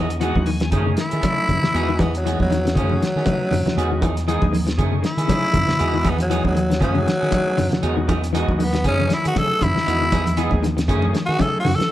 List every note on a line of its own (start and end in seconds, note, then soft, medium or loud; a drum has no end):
0.00 0.31 E2 loud
0.00 0.10 E3 medium
0.00 0.17 D#5 medium
0.10 muted clean electric guitar stroke soft
0.10 closed hi-hat medium
0.20 0.35 E3 medium
0.20 0.36 E3 medium
0.20 0.50 G#3 medium
0.20 0.50 B3 medium
0.20 0.36 B3 medium
0.20 0.51 D#4 medium
0.20 0.36 D#4 medium
0.20 0.51 F#4 loud
0.20 0.35 G#4 medium
0.20 0.45 F#5 medium
0.20 closed hi-hat medium
0.35 0.72 D#2 medium
0.35 muted clean electric guitar stroke soft
0.35 kick medium
0.35 high conga medium
0.46 0.55 D#3 medium
0.46 0.70 G#5 medium
0.46 muted clean electric guitar stroke soft
0.46 open hi-hat medium
0.60 0.67 E3 medium
0.60 muted clean electric guitar stroke soft
0.60 snare medium
0.60 closed hi-hat medium
0.71 0.95 F#2 loud
0.71 0.89 D#3 medium
0.71 1.01 A3 medium
0.71 0.89 A3 medium
0.71 1.01 C#4 medium
0.71 0.89 C#4 loud
0.71 1.01 D#4 medium
0.71 1.01 G#4 medium
0.71 0.89 G#4 medium
0.71 kick medium
0.71 closed hi-hat medium
0.71 low conga medium
0.86 0.93 C#3 medium
0.97 1.12 D#3 medium
0.97 2.02 E4 loud
0.97 muted clean electric guitar stroke soft
0.97 snare medium
0.97 closed hi-hat medium
1.11 1.22 D#3 medium
1.11 1.22 A3 soft
1.11 1.22 C#4 soft
1.11 1.22 G#4 medium
1.11 closed hi-hat medium
1.21 1.38 C#3 medium
1.21 1.46 F#3 loud
1.21 1.51 A3 medium
1.21 1.52 C#4 medium
1.21 1.51 D#4 medium
1.21 1.52 A4 medium
1.21 muted clean electric guitar stroke soft
1.21 kick medium
1.21 closed hi-hat medium
1.21 high conga medium
1.49 1.61 F#2 medium
1.49 1.57 D#3 medium
1.49 kick medium
1.49 closed hi-hat medium
1.49 high conga medium
1.49 low conga medium
1.62 1.77 E3 medium
1.62 muted clean electric guitar stroke soft
1.62 snare medium
1.62 low conga medium
1.73 2.35 E2 loud
1.73 1.88 E3 medium
1.73 2.03 G#3 medium
1.73 2.03 B3 medium
1.73 1.88 B3 medium
1.73 2.03 D#4 medium
1.73 1.88 D#4 medium
1.73 2.03 F#4 loud
1.73 1.87 G#4 medium
1.73 closed hi-hat medium
1.89 1.95 D#3 medium
1.89 muted clean electric guitar stroke soft
1.99 2.14 E3 medium
1.99 2.13 B3 medium
1.99 2.14 B3 medium
1.99 2.13 D#4 medium
1.99 2.13 G#4 medium
1.99 kick medium
1.99 closed hi-hat medium
1.99 high conga medium
2.15 2.40 F#3 medium
2.15 muted clean electric guitar stroke soft
2.15 closed hi-hat soft
2.24 2.39 E3 medium
2.24 2.54 G#3 medium
2.24 2.54 B3 medium
2.24 2.39 B3 medium
2.24 2.54 D#4 medium
2.24 2.54 F#4 medium
2.24 2.39 G#4 medium
2.24 muted clean electric guitar stroke medium
2.24 snare soft
2.24 closed hi-hat medium
2.40 2.77 E2 medium
2.40 2.75 F#3 medium
2.40 muted clean electric guitar stroke soft
2.40 kick medium
2.40 high conga medium
2.51 2.59 D#3 medium
2.51 muted clean electric guitar stroke soft
2.51 snare soft
2.51 closed hi-hat medium
2.51 high conga medium
2.65 2.71 E3 medium
2.65 muted clean electric guitar stroke soft
2.65 snare medium
2.65 closed hi-hat medium
2.73 2.99 F#2 loud
2.73 2.92 D#3 medium
2.73 3.03 A3 medium
2.73 3.04 C#4 medium
2.73 3.04 D#4 medium
2.73 3.04 G#4 medium
2.73 kick medium
2.73 closed hi-hat medium
2.73 low conga medium
2.77 4.25 F#3 loud
2.77 2.93 A3 medium
2.77 2.93 C#4 medium
2.77 2.93 G#4 medium
2.89 2.97 C#3 medium
2.89 high conga medium
3.02 3.16 D#3 medium
3.02 muted clean electric guitar stroke soft
3.02 snare medium
3.02 closed hi-hat medium
3.16 3.25 D#3 medium
3.16 3.27 A3 soft
3.16 3.27 C#4 soft
3.16 3.27 G#4 soft
3.16 snare soft
3.25 3.40 C#3 medium
3.25 3.49 F#3 medium
3.25 3.55 A3 medium
3.25 3.55 C#4 medium
3.25 3.55 D#4 medium
3.25 3.55 B4 medium
3.25 muted clean electric guitar stroke soft
3.25 kick medium
3.25 closed hi-hat medium
3.25 high conga medium
3.51 3.64 F#2 medium
3.51 3.59 D#3 medium
3.51 open hi-hat medium
3.51 high conga medium
3.51 low conga medium
3.66 3.80 E3 medium
3.66 muted clean electric guitar stroke soft
3.66 snare medium
3.66 closed hi-hat soft
3.66 low conga medium
3.76 4.38 E2 medium
3.76 3.91 D#3 medium
3.76 4.06 G#3 medium
3.76 4.06 B3 medium
3.76 3.91 B3 medium
3.76 4.06 D#4 medium
3.76 4.06 F#4 medium
3.76 3.90 G#4 loud
3.76 muted clean electric guitar stroke medium
3.76 closed hi-hat medium
3.91 3.98 D#3 medium
3.91 muted clean electric guitar stroke soft
4.02 4.16 D#3 medium
4.02 4.17 E3 medium
4.02 4.16 D#4 medium
4.02 4.16 G#4 medium
4.02 muted clean electric guitar stroke medium
4.02 kick medium
4.02 closed hi-hat soft
4.02 high conga medium
4.17 muted clean electric guitar stroke soft
4.17 snare soft
4.17 closed hi-hat medium
4.27 4.42 D#3 medium
4.27 4.42 E3 medium
4.27 4.56 G#3 loud
4.27 4.57 B3 medium
4.27 4.42 B3 medium
4.27 4.42 D#4 medium
4.27 4.57 D#4 medium
4.27 4.42 G#4 medium
4.27 4.57 G#4 loud
4.27 closed hi-hat medium
4.42 4.79 D#2 medium
4.42 muted clean electric guitar stroke soft
4.42 kick medium
4.42 high conga medium
4.53 4.61 D#3 medium
4.53 muted clean electric guitar stroke soft
4.53 open hi-hat medium
4.53 high conga medium
4.67 4.73 E3 medium
4.67 muted clean electric guitar stroke soft
4.67 snare medium
4.67 closed hi-hat medium
4.77 5.02 F#2 loud
4.77 4.94 D#3 medium
4.77 5.07 A3 medium
4.77 4.95 A3 medium
4.77 5.07 C#4 medium
4.77 5.07 D#4 medium
4.77 5.07 G#4 medium
4.77 4.95 G#4 medium
4.77 muted clean electric guitar stroke loud
4.77 kick medium
4.77 closed hi-hat medium
4.77 low conga medium
4.92 4.98 C#3 medium
5.03 5.17 D#3 medium
5.03 6.11 E4 loud
5.03 muted clean electric guitar stroke soft
5.03 snare medium
5.03 closed hi-hat medium
5.17 5.28 D#3 medium
5.17 5.28 A3 soft
5.17 5.29 C#4 soft
5.17 5.29 G#4 medium
5.17 closed hi-hat medium
5.28 5.42 C#3 medium
5.28 5.52 F#3 medium
5.28 5.58 A3 medium
5.28 5.59 C#4 medium
5.28 5.59 D#4 medium
5.28 5.59 G#4 medium
5.28 muted clean electric guitar stroke soft
5.28 kick medium
5.28 closed hi-hat medium
5.28 high conga medium
5.53 5.67 F#2 medium
5.53 5.61 D#3 medium
5.53 kick medium
5.53 closed hi-hat medium
5.53 high conga medium
5.53 low conga medium
5.67 5.82 E3 medium
5.67 muted clean electric guitar stroke soft
5.67 muted fingered electric bass stroke soft
5.67 snare medium
5.67 low conga medium
5.79 6.41 E2 loud
5.79 5.94 E3 medium
5.79 6.09 G#3 medium
5.79 6.09 B3 medium
5.79 6.09 D#4 medium
5.79 5.93 D#4 medium
5.79 6.09 F#4 loud
5.79 5.92 G#4 medium
5.79 muted clean electric guitar stroke medium
5.79 closed hi-hat medium
5.93 6.00 D#3 medium
5.93 muted clean electric guitar stroke soft
6.04 6.19 E3 medium
6.04 6.18 B3 medium
6.04 6.18 D#4 medium
6.04 6.18 G#4 medium
6.04 kick medium
6.04 closed hi-hat medium
6.04 high conga loud
6.10 6.21 B3 medium
6.19 6.45 F#3 medium
6.19 muted clean electric guitar stroke soft
6.19 closed hi-hat medium
6.19 high conga medium
6.30 6.44 E3 medium
6.30 6.45 E3 medium
6.30 6.60 G#3 medium
6.30 6.44 B3 medium
6.30 6.60 B3 medium
6.30 6.44 D#4 medium
6.30 6.60 D#4 medium
6.30 6.43 G#4 medium
6.30 6.60 G#4 medium
6.30 closed hi-hat medium
6.44 6.82 D#2 medium
6.44 6.81 F#3 medium
6.44 muted clean electric guitar stroke soft
6.44 kick medium
6.44 high conga medium
6.55 6.63 D#3 medium
6.55 muted clean electric guitar stroke soft
6.55 closed hi-hat medium
6.55 high conga medium
6.70 6.76 E3 medium
6.70 muted clean electric guitar stroke soft
6.70 snare medium
6.70 closed hi-hat soft
6.80 7.05 F#2 loud
6.80 6.97 D#3 medium
6.80 8.31 F#3 loud
6.80 7.10 A3 medium
6.80 6.97 A3 medium
6.80 6.98 C#4 medium
6.80 7.11 C#4 medium
6.80 7.11 D#4 medium
6.80 6.98 G#4 medium
6.80 7.11 G#4 medium
6.80 kick medium
6.80 closed hi-hat medium
6.80 low conga medium
6.95 7.01 C#3 medium
6.95 high conga medium
7.07 7.21 D#3 medium
7.07 muted clean electric guitar stroke soft
7.07 snare medium
7.07 closed hi-hat soft
7.20 7.31 D#3 medium
7.20 7.31 A3 soft
7.20 7.31 C#4 soft
7.20 7.31 G#4 soft
7.20 snare soft
7.31 7.45 D#3 medium
7.31 7.55 F#3 medium
7.31 7.62 A3 medium
7.31 7.62 C#4 medium
7.31 7.62 D#4 medium
7.31 7.62 G#4 medium
7.31 muted clean electric guitar stroke soft
7.31 kick medium
7.31 closed hi-hat medium
7.31 high conga medium
7.57 7.71 F#2 medium
7.57 7.65 D#3 medium
7.57 snare soft
7.57 open hi-hat medium
7.57 high conga medium
7.57 low conga medium
7.71 7.85 E3 medium
7.71 muted clean electric guitar stroke soft
7.71 muted fingered electric bass stroke soft
7.71 snare medium
7.71 closed hi-hat soft
7.71 low conga medium
7.82 8.44 E2 loud
7.82 7.97 D#3 medium
7.82 8.12 G#3 medium
7.82 7.96 B3 medium
7.82 8.13 B3 medium
7.82 7.96 D#4 medium
7.82 8.13 D#4 medium
7.82 8.13 F#4 medium
7.82 7.96 G#4 medium
7.82 closed hi-hat medium
7.97 8.03 D#3 medium
7.97 muted clean electric guitar stroke soft
8.08 8.22 D#3 medium
8.08 8.22 E3 medium
8.08 8.22 B3 medium
8.08 8.21 D#4 medium
8.08 8.21 G#4 medium
8.08 kick medium
8.08 closed hi-hat medium
8.08 high conga medium
8.22 muted clean electric guitar stroke medium
8.22 snare soft
8.22 closed hi-hat medium
8.33 8.48 D#3 medium
8.33 8.47 E3 medium
8.33 8.63 G#3 loud
8.33 8.48 B3 medium
8.33 8.64 B3 medium
8.33 8.47 D#4 medium
8.33 8.64 D#4 medium
8.33 8.64 F#4 loud
8.33 8.47 G#4 loud
8.33 snare soft
8.33 closed hi-hat medium
8.48 8.85 D#2 medium
8.48 muted clean electric guitar stroke soft
8.48 kick medium
8.48 high conga medium
8.59 8.67 D#3 medium
8.59 8.85 B3 medium
8.59 muted clean electric guitar stroke soft
8.59 open hi-hat medium
8.59 high conga medium
8.73 8.79 D#3 medium
8.73 muted clean electric guitar stroke soft
8.73 snare medium
8.73 closed hi-hat soft
8.84 9.08 F#2 loud
8.84 9.01 D#3 medium
8.84 9.14 A3 medium
8.84 9.01 A3 medium
8.84 9.14 C#4 medium
8.84 9.02 C#4 medium
8.84 9.15 C#4 loud
8.84 9.14 D#4 medium
8.84 9.14 G#4 medium
8.84 9.02 G#4 medium
8.84 kick medium
8.84 closed hi-hat medium
8.84 low conga medium
8.99 9.05 C#3 medium
8.99 high conga medium
9.10 9.24 D#3 medium
9.10 9.25 E4 medium
9.10 muted clean electric guitar stroke soft
9.10 snare medium
9.10 closed hi-hat medium
9.24 9.35 D#3 medium
9.24 9.34 A3 soft
9.24 9.35 C#4 soft
9.24 9.40 F#4 medium
9.24 9.35 G#4 medium
9.24 closed hi-hat medium
9.35 9.50 C#3 medium
9.35 9.59 F#3 loud
9.35 9.65 A3 medium
9.35 9.65 C#4 medium
9.35 9.65 D#4 medium
9.35 9.65 G#4 medium
9.35 9.65 A4 loud
9.35 muted clean electric guitar stroke soft
9.35 kick medium
9.35 closed hi-hat medium
9.35 high conga medium
9.61 9.74 F#2 medium
9.61 9.69 D#3 medium
9.61 10.61 E4 loud
9.61 kick medium
9.61 closed hi-hat medium
9.61 high conga medium
9.61 low conga medium
9.75 9.90 E3 medium
9.75 muted clean electric guitar stroke soft
9.75 muted fingered electric bass stroke soft
9.75 snare medium
9.75 low conga medium
9.86 10.48 E2 loud
9.86 10.01 D#3 medium
9.86 10.16 G#3 medium
9.86 10.00 B3 medium
9.86 10.16 B3 medium
9.86 10.00 D#4 medium
9.86 10.16 D#4 medium
9.86 10.16 F#4 medium
9.86 muted clean electric guitar stroke medium
9.86 closed hi-hat medium
10.01 10.08 D#3 medium
10.01 muted clean electric guitar stroke soft
10.12 10.26 D#3 medium
10.12 10.27 E3 medium
10.12 10.26 B3 medium
10.12 10.26 D#4 medium
10.12 10.25 G#4 medium
10.12 kick medium
10.12 closed hi-hat medium
10.12 high conga medium
10.26 muted clean electric guitar stroke soft
10.26 closed hi-hat medium
10.26 high conga medium
10.37 10.52 E3 medium
10.37 10.67 G#3 medium
10.37 10.67 B3 medium
10.37 10.51 B3 medium
10.37 10.51 D#4 loud
10.37 10.67 D#4 medium
10.37 10.67 G#4 medium
10.37 10.52 G#4 loud
10.37 closed hi-hat medium
10.51 10.89 D#2 medium
10.51 muted clean electric guitar stroke soft
10.51 kick medium
10.51 high conga medium
10.62 10.71 D#3 medium
10.62 muted clean electric guitar stroke soft
10.62 snare soft
10.62 closed hi-hat medium
10.62 high conga medium
10.77 10.83 E3 medium
10.77 muted clean electric guitar stroke soft
10.77 snare medium
10.77 closed hi-hat medium
10.88 11.12 F#2 loud
10.88 11.05 D#3 medium
10.88 11.05 A3 medium
10.88 11.19 A3 medium
10.88 11.05 C#4 medium
10.88 11.19 C#4 medium
10.88 11.19 D#4 medium
10.88 11.05 G#4 loud
10.88 11.19 G#4 loud
10.88 kick medium
10.88 closed hi-hat medium
10.88 low conga medium
11.02 high conga medium
11.13 11.28 D#3 medium
11.13 muted clean electric guitar stroke soft
11.13 snare medium
11.13 closed hi-hat soft
11.26 11.39 D#3 medium
11.26 11.39 C#4 soft
11.26 11.43 F#4 loud
11.26 11.39 G#4 soft
11.30 muted clean electric guitar stroke soft
11.30 snare soft
11.39 11.53 C#3 medium
11.39 11.63 F#3 medium
11.39 11.69 A3 medium
11.39 11.69 C#4 medium
11.39 11.70 D#4 medium
11.39 11.70 G#4 medium
11.39 11.57 A4 medium
11.39 muted clean electric guitar stroke soft
11.39 kick medium
11.39 closed hi-hat medium
11.39 high conga loud
11.60 11.77 F#4 loud
11.65 11.78 F#2 medium
11.65 11.73 D#3 medium
11.65 open hi-hat medium
11.65 high conga medium
11.65 low conga medium
11.75 11.92 E3 medium
11.75 11.91 A4 medium
11.80 muted clean electric guitar stroke soft
11.80 muted fingered electric bass stroke soft
11.80 snare medium
11.80 closed hi-hat soft